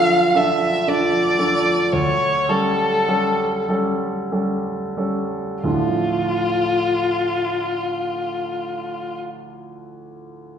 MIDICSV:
0, 0, Header, 1, 3, 480
1, 0, Start_track
1, 0, Key_signature, -1, "minor"
1, 0, Tempo, 1041667
1, 885, Tempo, 1156069
1, 886, Time_signature, 3, 2, 24, 8
1, 1365, Tempo, 1237113
1, 1845, Tempo, 1301518
1, 2805, Tempo, 1242236
1, 4223, End_track
2, 0, Start_track
2, 0, Title_t, "Violin"
2, 0, Program_c, 0, 40
2, 0, Note_on_c, 0, 77, 63
2, 168, Note_on_c, 0, 76, 47
2, 175, Note_off_c, 0, 77, 0
2, 409, Note_on_c, 0, 74, 54
2, 416, Note_off_c, 0, 76, 0
2, 884, Note_on_c, 0, 73, 56
2, 890, Note_off_c, 0, 74, 0
2, 1122, Note_on_c, 0, 69, 51
2, 1128, Note_off_c, 0, 73, 0
2, 1604, Note_off_c, 0, 69, 0
2, 2334, Note_on_c, 0, 65, 37
2, 3677, Note_off_c, 0, 65, 0
2, 4223, End_track
3, 0, Start_track
3, 0, Title_t, "Grand piano"
3, 0, Program_c, 1, 0
3, 0, Control_c, 1, 64, 127
3, 0, Note_on_c, 1, 38, 38
3, 0, Note_on_c, 1, 53, 28
3, 0, Note_on_c, 1, 62, 30
3, 0, Note_on_c, 1, 69, 31
3, 140, Note_off_c, 1, 53, 0
3, 141, Note_off_c, 1, 62, 0
3, 143, Note_off_c, 1, 69, 0
3, 160, Note_on_c, 1, 62, 27
3, 161, Note_on_c, 1, 53, 28
3, 164, Note_on_c, 1, 69, 32
3, 380, Note_off_c, 1, 62, 0
3, 381, Note_off_c, 1, 53, 0
3, 383, Note_off_c, 1, 69, 0
3, 403, Note_on_c, 1, 53, 26
3, 403, Note_on_c, 1, 62, 25
3, 404, Note_on_c, 1, 69, 28
3, 623, Note_off_c, 1, 62, 0
3, 624, Note_off_c, 1, 53, 0
3, 624, Note_off_c, 1, 69, 0
3, 638, Note_on_c, 1, 53, 30
3, 641, Note_on_c, 1, 62, 25
3, 641, Note_on_c, 1, 69, 27
3, 866, Note_off_c, 1, 53, 0
3, 867, Note_off_c, 1, 62, 0
3, 868, Note_off_c, 1, 69, 0
3, 889, Note_off_c, 1, 38, 0
3, 889, Note_on_c, 1, 38, 36
3, 892, Control_c, 1, 64, 0
3, 972, Control_c, 1, 64, 127
3, 1114, Note_off_c, 1, 38, 0
3, 1121, Note_on_c, 1, 55, 28
3, 1123, Note_on_c, 1, 61, 27
3, 1125, Note_on_c, 1, 69, 30
3, 1350, Note_off_c, 1, 55, 0
3, 1351, Note_off_c, 1, 61, 0
3, 1352, Note_off_c, 1, 69, 0
3, 1367, Note_on_c, 1, 55, 27
3, 1369, Note_on_c, 1, 61, 28
3, 1369, Note_on_c, 1, 69, 31
3, 1588, Note_off_c, 1, 55, 0
3, 1588, Note_off_c, 1, 61, 0
3, 1589, Note_off_c, 1, 69, 0
3, 1602, Note_on_c, 1, 55, 26
3, 1606, Note_on_c, 1, 61, 26
3, 1607, Note_on_c, 1, 69, 28
3, 1829, Note_off_c, 1, 55, 0
3, 1832, Note_off_c, 1, 61, 0
3, 1832, Note_off_c, 1, 69, 0
3, 1847, Note_on_c, 1, 55, 20
3, 1848, Note_on_c, 1, 61, 21
3, 1849, Note_on_c, 1, 69, 24
3, 2076, Note_off_c, 1, 55, 0
3, 2077, Note_off_c, 1, 61, 0
3, 2077, Note_off_c, 1, 69, 0
3, 2087, Note_on_c, 1, 55, 21
3, 2088, Note_on_c, 1, 61, 21
3, 2091, Note_on_c, 1, 69, 22
3, 2317, Note_off_c, 1, 55, 0
3, 2318, Note_off_c, 1, 61, 0
3, 2319, Note_off_c, 1, 69, 0
3, 2333, Note_on_c, 1, 38, 27
3, 2334, Note_on_c, 1, 45, 23
3, 2336, Note_on_c, 1, 53, 23
3, 2336, Note_on_c, 1, 57, 24
3, 2338, Note_on_c, 1, 62, 20
3, 2338, Note_on_c, 1, 65, 21
3, 2342, Control_c, 1, 64, 0
3, 2427, Control_c, 1, 64, 127
3, 3676, Note_off_c, 1, 38, 0
3, 3677, Note_off_c, 1, 45, 0
3, 3679, Note_off_c, 1, 53, 0
3, 3680, Note_off_c, 1, 57, 0
3, 3681, Note_off_c, 1, 62, 0
3, 3681, Note_off_c, 1, 65, 0
3, 4223, End_track
0, 0, End_of_file